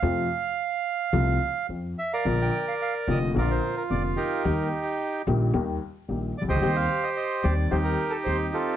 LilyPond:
<<
  \new Staff \with { instrumentName = "Bandoneon" } { \time 4/4 \key f \major \tempo 4 = 110 << { f''2. r8 e''16 f''16~ | \key bes \major f''16 g''8 f''16 f''8 ees''8 d''16 c''8 bes'16 d''8 bes'8~ | bes'8 r2. d''16 ees''16~ | ees''16 f''8 ees''16 ees''8 d''8 c''16 bes'8 a'16 c''8 a'8 | } \\ { r2. r8. <bes' d''>16~ | <bes' d''>4.~ <bes' d''>16 r16 <f' bes'>4. <ees' g'>8~ | <ees' g'>4. r2 r16 <g' c''>16~ | <g' c''>4.~ <g' c''>16 r16 <ees' g'>4. <c' f'>8 | } >> }
  \new Staff \with { instrumentName = "Grand piano" } { \clef bass \time 4/4 \key f \major <f, c f a f'>8 r4. <c, c f a f'>8 r8 <f, f>8 r8 | \key bes \major <bes,, bes, d f bes f'>8 r4 <f,, f, d f bes f'>8 <bes,, bes, d f bes f'>8 r8 <f,, f, d f bes f'>8 r8 | <ees, ees g bes g'>8 r4 <bes,, bes, ees g bes g'>8 <ees, ees g bes g'>8 r8 <bes,, bes, ees g bes g'>8 r32 c,32 des,32 d,32 | <ees, ees g c' g'>8 r4 <ees, ees g c' g'>8 <ees, ees g c' g'>8 r8 <ees, ees g c' g'>8 r8 | }
  \new Staff \with { instrumentName = "Upright bass" } { \clef bass \time 4/4 \key f \major f,16. r4. r32 c,16. r8 r32 f,16. r8 r32 | \key bes \major bes,,16. r4 r32 f,,16. r32 bes,,16. r8 r32 f,,16. r8 r32 | ees,16. r4 r32 bes,,16. r32 ees,16. r8 r32 bes,,16. r16 c,32 des,32 d,32 | ees,16. r4 r32 ees,16. r32 ees,16. r8 r32 ees,16. r8 r32 | }
>>